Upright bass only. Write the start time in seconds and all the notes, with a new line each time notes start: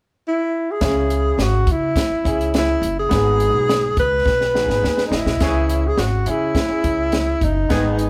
0.81 C#2
1.38 G#1
1.67 C#3
2.10 muted upright bass stroke
2.25 C#2
2.82 F#1
3.11 G#1
3.54 B1
3.97 C#2
4.25 B1
4.68 G#1
4.82 D#2
5.11 A1
5.25 B1
5.40 C#2
5.97 G#1
6.26 C#3
6.70 muted upright bass stroke
6.84 C#2
7.41 F#1
7.70 G#1